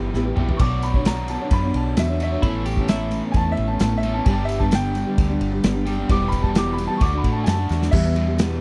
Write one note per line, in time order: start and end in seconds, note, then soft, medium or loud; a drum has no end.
0.00 0.11 G1 medium
0.00 0.35 E2 loud
0.00 0.35 B2 loud
0.00 0.35 E3 loud
0.00 0.36 G3 loud
0.00 0.15 E4 soft
0.00 0.35 E4 loud
0.00 0.15 G4 medium
0.00 0.35 G4 loud
0.00 0.14 B4 medium
0.14 0.35 A1 medium
0.14 0.25 E3 medium
0.14 0.26 B3 medium
0.14 0.26 E4 medium
0.14 0.25 G4 loud
0.14 0.24 B4 medium
0.14 snare medium
0.25 0.37 E4 medium
0.25 0.37 G4 medium
0.25 0.37 B4 medium
0.37 0.58 B1 medium
0.37 0.59 E2 medium
0.37 0.57 B2 medium
0.37 0.59 E3 medium
0.37 0.59 G3 medium
0.37 0.48 B3 medium
0.37 0.49 E4 medium
0.37 0.50 G4 medium
0.37 0.47 B4 medium
0.37 mid tom medium
0.49 0.61 G4 soft
0.49 0.60 B4 medium
0.49 floor tom medium
0.53 0.60 E4 soft
0.53 0.59 C#6 medium
0.59 1.37 B1 loud
0.59 0.94 B2 medium
0.59 0.94 F#3 medium
0.59 0.95 B3 medium
0.59 0.95 D4 medium
0.59 0.94 F#4 medium
0.59 0.93 C#5 medium
0.59 0.82 D6 loud
0.59 kick loud
0.59 ride medium
0.59 crash medium
0.82 1.05 B5 medium
0.82 ride medium
0.82 tambourine medium
0.94 1.05 B3 soft
0.94 1.05 D4 medium
0.94 1.06 F#4 medium
0.94 1.06 C#5 medium
0.94 kick medium
1.05 1.28 B2 medium
1.05 1.28 F#3 medium
1.05 1.27 B3 medium
1.05 1.28 D4 medium
1.05 1.29 F#4 medium
1.05 1.29 C#5 medium
1.05 1.28 A#5 medium
1.05 snare loud
1.05 ride loud
1.05 tambourine medium
1.28 1.40 B3 medium
1.28 1.40 D4 medium
1.28 1.40 F#4 medium
1.28 1.39 C#5 medium
1.28 1.51 A5 medium
1.28 ride medium
1.28 tambourine medium
1.40 1.65 B3 soft
1.40 1.64 D4 soft
1.40 1.63 F#4 soft
1.40 1.62 C#5 soft
1.51 1.71 F#2 medium
1.51 1.74 B5 loud
1.51 kick loud
1.51 ride loud
1.51 tambourine medium
1.63 1.96 B3 soft
1.63 1.97 D4 soft
1.63 1.97 F#4 soft
1.63 1.97 C#5 medium
1.74 1.94 B1 medium
1.74 1.97 A5 medium
1.74 ride medium
1.74 tambourine soft
1.96 2.36 E2 medium
1.96 2.08 B2 medium
1.96 2.08 F#3 medium
1.96 2.09 B3 medium
1.96 2.09 D4 medium
1.96 2.08 F#4 medium
1.96 2.07 C#5 medium
1.96 2.21 E5 medium
1.96 snare loud
1.96 ride loud
1.96 tambourine medium
2.08 2.18 B3 soft
2.08 2.20 D4 soft
2.08 2.20 F#4 medium
2.08 2.20 C#5 medium
2.19 2.43 B2 medium
2.19 2.43 F#3 medium
2.19 2.31 B3 medium
2.19 2.32 D4 medium
2.19 2.31 F#4 medium
2.19 2.30 C#5 medium
2.19 ride medium
2.19 tambourine medium
2.23 2.44 E5 medium
2.31 2.42 B3 soft
2.31 2.43 D4 soft
2.31 2.43 F#4 medium
2.31 2.43 C#5 medium
2.42 3.20 A1 loud
2.42 2.77 A2 medium
2.42 4.03 E3 medium
2.42 2.77 A3 medium
2.42 2.77 B3 medium
2.42 2.77 C#4 medium
2.42 2.75 E4 medium
2.42 4.02 A4 loud
2.42 kick loud
2.42 ride medium
2.66 2.88 G4 medium
2.66 ride medium
2.66 tambourine medium
2.76 2.89 B3 medium
2.76 2.88 C#4 medium
2.76 2.88 E4 medium
2.76 kick medium
2.88 3.11 A2 medium
2.88 3.11 A3 medium
2.88 3.12 B3 loud
2.88 3.12 C#4 medium
2.88 3.13 E4 medium
2.88 snare loud
2.88 ride loud
2.88 tambourine medium
3.11 3.23 A3 medium
3.11 3.23 B3 medium
3.11 3.24 C#4 medium
3.11 ride medium
3.11 tambourine medium
3.15 3.21 E4 medium
3.23 3.47 B3 soft
3.23 3.48 C#4 soft
3.23 3.45 E4 soft
3.32 3.54 E2 loud
3.32 3.34 G#5 medium
3.32 kick loud
3.32 ride loud
3.32 tambourine medium
3.36 3.50 A5 loud
3.46 3.70 B3 soft
3.46 3.71 C#4 soft
3.46 3.68 E4 medium
3.52 3.66 E5 loud
3.57 3.77 A1 medium
3.57 ride medium
3.57 tambourine soft
3.67 3.81 B3 soft
3.67 3.80 E4 medium
3.67 3.81 A5 loud
3.72 3.82 C#4 soft
3.79 4.19 A1 medium
3.79 3.92 A2 medium
3.79 3.92 A3 medium
3.79 3.92 B3 medium
3.79 3.93 C#4 medium
3.79 3.90 E4 medium
3.79 3.96 A5 medium
3.79 snare loud
3.79 ride medium
3.79 tambourine medium
3.91 4.03 B3 soft
3.91 4.02 C#4 soft
3.91 4.03 E4 medium
3.98 4.12 E5 medium
4.02 4.26 A2 medium
4.02 4.26 E3 medium
4.02 4.14 A3 medium
4.02 4.15 B3 medium
4.02 4.15 C#4 medium
4.02 4.13 E4 medium
4.02 4.25 A4 medium
4.02 ride medium
4.02 tambourine medium
4.14 4.26 B3 medium
4.14 4.27 C#4 soft
4.14 4.26 E4 medium
4.14 4.27 A5 medium
4.25 5.04 G1 loud
4.25 4.60 G2 medium
4.25 4.61 D3 medium
4.25 4.61 G3 medium
4.25 4.61 B3 medium
4.25 4.60 D4 medium
4.25 4.58 G4 medium
4.25 4.27 G#5 medium
4.25 kick loud
4.25 ride medium
4.30 4.43 A5 medium
4.45 4.58 E5 medium
4.45 ride medium
4.45 tambourine medium
4.59 4.72 G3 soft
4.59 4.72 B3 medium
4.59 4.72 D4 medium
4.59 4.72 G4 medium
4.59 4.73 A5 medium
4.59 kick medium
4.71 4.95 G2 medium
4.71 4.95 D3 medium
4.71 4.93 G3 medium
4.71 4.95 B3 medium
4.71 4.95 D4 medium
4.71 4.96 G4 medium
4.71 5.18 G5 loud
4.71 snare loud
4.71 ride loud
4.71 tambourine medium
4.95 5.06 G3 medium
4.95 5.07 B3 medium
4.95 5.06 D4 medium
4.95 5.05 G4 medium
4.95 ride medium
4.95 tambourine medium
5.06 5.31 G3 soft
5.06 5.30 B3 soft
5.06 5.29 D4 soft
5.06 5.27 G4 medium
5.18 5.37 D2 loud
5.18 kick loud
5.18 ride loud
5.18 tambourine medium
5.29 5.54 G3 soft
5.29 5.53 B3 medium
5.29 5.51 D4 medium
5.29 5.50 G4 medium
5.41 5.60 G1 medium
5.41 ride medium
5.41 tambourine soft
5.52 5.63 G3 soft
5.52 5.63 B3 medium
5.52 5.64 D4 medium
5.52 5.63 G4 medium
5.63 6.03 G1 medium
5.63 5.75 G2 medium
5.63 5.75 D3 medium
5.63 5.76 G3 medium
5.63 5.76 B3 medium
5.63 5.75 D4 medium
5.63 5.73 G4 loud
5.63 snare loud
5.63 ride loud
5.63 tambourine medium
5.74 5.84 G3 soft
5.74 5.85 B3 medium
5.74 5.87 D4 medium
5.74 5.86 G4 medium
5.85 6.08 G2 medium
5.85 6.09 D3 medium
5.85 5.98 G3 medium
5.85 5.98 B3 medium
5.85 5.97 D4 medium
5.85 5.96 G4 medium
5.85 ride medium
5.85 tambourine medium
5.97 6.09 G3 soft
5.97 6.09 B3 medium
5.97 6.10 D4 medium
5.97 6.09 G4 medium
6.09 6.87 E1 loud
6.09 6.44 E2 medium
6.09 6.44 B2 medium
6.09 6.44 E3 medium
6.09 6.44 G3 medium
6.09 6.43 B3 loud
6.09 6.41 G4 medium
6.09 6.26 D6 medium
6.09 kick loud
6.09 ride loud
6.09 tambourine soft
6.28 6.42 B5 loud
6.28 kick medium
6.28 tambourine medium
6.33 ride medium
6.42 6.54 E3 soft
6.42 6.55 G3 medium
6.42 6.55 B3 medium
6.42 6.55 G4 medium
6.42 6.56 A5 loud
6.42 kick medium
6.54 6.78 E2 medium
6.54 6.78 B2 medium
6.54 6.76 E3 medium
6.54 6.77 G3 medium
6.54 6.78 B3 medium
6.54 6.79 G4 medium
6.54 snare loud
6.54 ride loud
6.54 tambourine medium
6.58 6.72 D6 loud
6.73 6.89 E3 medium
6.73 6.87 B5 medium
6.78 6.89 G3 medium
6.78 6.88 B3 medium
6.78 6.87 G4 medium
6.78 ride medium
6.78 tambourine medium
6.87 7.01 G3 soft
6.87 7.01 B3 medium
6.87 7.01 G4 medium
6.87 7.02 A5 loud
6.92 7.00 E3 soft
6.97 7.21 D2 loud
6.97 7.13 D3 medium
6.97 7.00 C#6 medium
6.97 kick loud
6.97 ride loud
6.97 tambourine medium
7.02 7.13 A3 medium
7.02 7.13 D4 medium
7.02 7.11 F#4 medium
7.02 7.17 D6 loud
7.12 7.37 A3 medium
7.12 7.36 D4 soft
7.12 7.33 F#4 medium
7.18 7.32 B5 medium
7.24 7.45 A2 medium
7.24 kick medium
7.24 ride medium
7.24 tambourine soft
7.32 7.47 F#4 medium
7.32 7.47 A5 medium
7.37 7.46 A3 soft
7.37 7.47 D4 soft
7.44 7.68 F#2 medium
7.44 7.59 D3 medium
7.44 7.59 A3 medium
7.44 7.47 G#5 medium
7.44 snare loud
7.44 ride medium
7.44 tambourine medium
7.48 7.58 D4 medium
7.48 7.56 F#4 medium
7.48 7.93 A5 loud
7.57 7.69 A3 soft
7.57 7.70 D4 medium
7.57 7.70 F#4 medium
7.69 7.91 E2 medium
7.69 7.81 D3 medium
7.69 7.82 A3 medium
7.69 7.81 D4 medium
7.69 7.79 F#4 medium
7.69 snare medium
7.69 tambourine medium
7.80 7.92 A3 medium
7.80 7.92 D4 soft
7.80 7.93 F#4 medium
7.80 snare medium
7.91 8.15 E2 medium
7.91 8.61 E2 medium
7.91 8.16 B2 medium
7.91 8.12 E3 medium
7.91 8.13 G3 medium
7.91 8.14 B3 medium
7.91 8.15 G4 medium
7.91 8.35 E5 loud
7.91 kick loud
7.91 crash loud
7.91 tambourine medium
8.13 8.61 B2 medium
8.13 8.26 E3 medium
8.13 8.27 G3 medium
8.13 8.26 B3 medium
8.13 8.25 G4 medium
8.13 ride medium
8.13 tambourine soft
8.26 8.37 E3 soft
8.26 8.38 G3 medium
8.26 8.37 B3 medium
8.26 8.38 G4 medium
8.37 8.61 E2 medium
8.37 8.61 B2 medium
8.37 8.61 E3 medium
8.37 8.61 G3 medium
8.37 8.61 B3 medium
8.37 8.61 G4 medium
8.37 snare loud
8.37 ride loud
8.37 tambourine medium